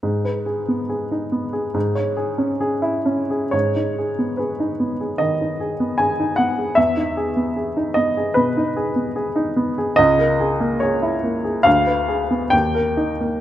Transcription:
\new Staff \with { instrumentName = "Upright piano" } { \time 4/4 \key gis \minor \tempo 4 = 72 << { r1 | cis''4 b'4 dis''4 gis''8 fis''8 | e''4. dis''8 b'2 | dis''4 cis''4 f''4 g''4 | } \\ { gis,16 b'16 gis'16 b16 gis'16 dis'16 b16 gis'16 gis,16 cis''16 gis'16 cis'16 gis'16 e'16 cis'16 gis'16 | gis,16 dis'16 gis'16 b16 gis'16 dis'16 b16 gis'16 dis16 dis'16 gis'16 b16 gis'16 dis'16 b16 gis'16 | e,16 dis'16 gis'16 b16 gis'16 dis'16 b16 gis'16 b,16 dis'16 gis'16 b16 gis'16 dis'16 b16 gis'16 | cis,16 ais'16 gis'16 ais16 gis'16 e'16 ais16 gis'16 d,16 b'16 aes'16 b16 dis,16 ais'16 dis'16 ais16 | } >> }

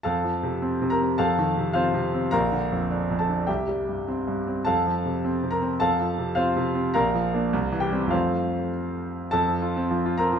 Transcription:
<<
  \new Staff \with { instrumentName = "Grand piano" } { \time 2/4 \key f \major \tempo 4 = 104 <a' f'' a''>4. <bes' bes''>8 | <a' f'' a''>4 <f' c'' f''>4 | <bes' f'' bes''>4. <a' a''>8 | <g' e'' g''>4 r4 |
<a' f'' a''>4. <bes' bes''>8 | <a' f'' a''>4 <f' c'' f''>4 | <bes' f'' bes''>4. <g' g''>8 | <f' c'' f''>4 r4 |
<a' a''>4. <bes' bes''>8 | }
  \new Staff \with { instrumentName = "Grand piano" } { \clef bass \time 2/4 \key f \major \tuplet 3/2 { f,8 f8 c8 c'8 c8 c'8 } | \tuplet 3/2 { f,8 ees8 c8 c'8 c8 c'8 } | \tuplet 3/2 { bes,,8 d8 f,8 d'8 f,8 d'8 } | \tuplet 3/2 { c,8 g8 g,8 c'8 g,8 c'8 } |
\tuplet 3/2 { f,8 f8 c8 c'8 c8 c'8 } | \tuplet 3/2 { f,8 f8 c8 c'8 c8 c'8 } | \tuplet 3/2 { bes,,8 f8 <bes d'>8 c,8 e8 <g c'>8 } | <f, f a c'>2 |
f,16 f16 f'16 c'16 f16 f'16 c'16 f16 | }
>>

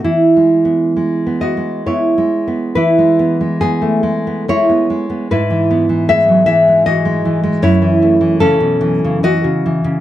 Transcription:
\new Staff \with { instrumentName = "Nylon-string guitar" } { \time 3/4 \key e \major \tempo 4 = 72 << { e'4. <fis' dis''>8 <e' cis''>4 | <e' b'>4 <b gis'>4 <e' cis''>4 | <e' b'>4 <gis' e''>8 <gis' e''>8 <fis' dis''>4 | <e' cis''>4 <cis' a'>4 <fis' dis''>4 | } \\ { \tuplet 3/2 { e8 gis8 b8 gis8 b8 gis8 b8 gis8 b8 } | e16 gis16 b16 gis8 a16 gis16 b16 gis16 b16 gis16 b16 | gis,16 e16 b16 e16 gis16 fis16 e16 gis16 e16 gis16 e16 gis16 | fis,16 e16 a16 e16 cis16 b,16 e16 cis16 e16 cis16 e16 cis16 | } >> }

